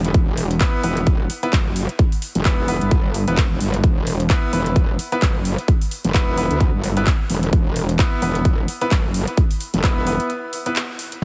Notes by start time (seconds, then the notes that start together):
Already playing: E1
0.05 closed hi-hat
0.14 E1, kick, closed hi-hat
0.37 open hi-hat
0.51 closed hi-hat
0.60 B3 E4 B4, kick, clap, closed hi-hat
0.84 E1 B3 E4 B4, open hi-hat
0.97 closed hi-hat
1.07 kick, closed hi-hat
1.30 open hi-hat
1.43 B3 E4 B4, closed hi-hat
1.53 F#1, kick, clap, closed hi-hat
1.76 open hi-hat
1.89 closed hi-hat
1.99 kick, closed hi-hat
2.12 open hi-hat
2.22 open hi-hat
2.35 E1, closed hi-hat
2.45 E1 B3 E4 B4, kick, clap, closed hi-hat
2.68 B3 E4 B4, open hi-hat
2.81 G1, closed hi-hat
2.91 kick, closed hi-hat
3.14 open hi-hat
3.28 E1 B3 E4 B4, closed hi-hat
3.37 kick, clap, closed hi-hat
3.60 G1, open hi-hat
3.74 closed hi-hat
3.84 E1, kick, closed hi-hat
4.07 open hi-hat
4.20 closed hi-hat
4.30 B3 E4 B4, kick, clap, closed hi-hat
4.53 E1 B3 E4 B4, open hi-hat
4.66 closed hi-hat
4.76 kick, closed hi-hat
4.99 open hi-hat
5.12 B3 E4 B4, closed hi-hat
5.22 F#1, kick, clap, closed hi-hat
5.45 open hi-hat
5.58 closed hi-hat
5.68 kick, closed hi-hat
5.81 open hi-hat
5.91 open hi-hat
6.04 E1, closed hi-hat
6.14 E1 B3 E4 B4, kick, clap, closed hi-hat
6.37 B3 E4 B4, open hi-hat
6.51 D2, closed hi-hat
6.61 kick, closed hi-hat
6.74 G1
6.84 open hi-hat
6.97 B3 E4 B4, closed hi-hat
7.07 kick, clap, closed hi-hat
7.30 E1, open hi-hat
7.43 closed hi-hat
7.53 E1, kick, closed hi-hat
7.76 open hi-hat
7.89 closed hi-hat
7.99 B3 E4 B4, kick, clap, closed hi-hat
8.22 E1 B3 E4 B4, open hi-hat
8.35 closed hi-hat
8.45 kick, closed hi-hat
8.68 open hi-hat
8.81 B3 E4 B4, closed hi-hat
8.91 F#1, kick, clap, closed hi-hat
9.14 open hi-hat
9.28 closed hi-hat
9.37 kick, closed hi-hat
9.51 open hi-hat
9.61 open hi-hat
9.74 E1, closed hi-hat
9.84 E1 B3 E4 B4, kick, clap, closed hi-hat
10.07 B3 E4 B4, open hi-hat
10.20 closed hi-hat
10.30 closed hi-hat
10.53 open hi-hat
10.66 B3 E4 B4, closed hi-hat
10.76 clap, closed hi-hat
10.99 open hi-hat
11.12 closed hi-hat